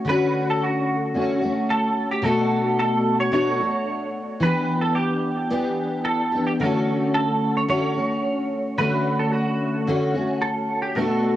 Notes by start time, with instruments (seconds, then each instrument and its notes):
Already playing: steel-string acoustic guitar F#4
0.05 steel-string acoustic guitar D3 A3
0.09 steel-string acoustic guitar C#4 F#4, clean electric guitar B4
0.50 clean electric guitar A4
0.63 clean electric guitar F#4
1.14 steel-string acoustic guitar D3 A3 C#4 F#4
1.41 steel-string acoustic guitar A3 C#4 F#4
1.70 clean electric guitar A4
2.11 clean electric guitar G4
2.22 steel-string acoustic guitar B2 A3 D4, clean electric guitar A4
2.27 steel-string acoustic guitar F#4
2.79 clean electric guitar A4
3.20 clean electric guitar C#5
3.32 steel-string acoustic guitar B2 A3 D4 F#4, clean electric guitar C#5
3.59 steel-string acoustic guitar A3 D4 F#4
4.40 steel-string acoustic guitar E3 B3 D4, clean electric guitar B4
4.45 steel-string acoustic guitar G4
4.82 clean electric guitar A4
4.95 clean electric guitar G4
5.50 steel-string acoustic guitar E3 B3 D4 G4
6.05 clean electric guitar A4
6.32 steel-string acoustic guitar B3 D4 G4
6.47 clean electric guitar G4
6.60 steel-string acoustic guitar D3 A3, clean electric guitar A4
6.64 steel-string acoustic guitar C#4 F#4
7.14 clean electric guitar A4
7.57 clean electric guitar C#5
7.68 steel-string acoustic guitar D3 A3 C#4 F#4, clean electric guitar C#5
7.95 steel-string acoustic guitar A3 C#4 F#4
8.78 steel-string acoustic guitar D3 A3 C#4, clean electric guitar B4
8.83 steel-string acoustic guitar F#4
9.19 clean electric guitar A4
9.32 clean electric guitar F#4
9.87 steel-string acoustic guitar D3 A3 C#4 F#4
10.14 steel-string acoustic guitar A3 C#4 F#4
10.42 clean electric guitar A4
10.82 clean electric guitar G4
10.95 steel-string acoustic guitar B2 A3 D4, clean electric guitar A4
11.00 steel-string acoustic guitar F#4